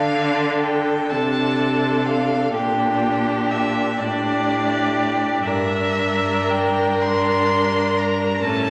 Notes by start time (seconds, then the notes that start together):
Already playing: D3 D4 A4 F5
0.61 G5
1.10 C3 D4 A4 A5
2.06 F5
2.54 A#2 D4 G4 G5
3.51 E5
3.99 A2 D4 G4 D5
5.44 G2 D4 A#4 E5
6.49 G5
7.02 C6
7.98 A#5
8.44 A2 C#4 A4 A5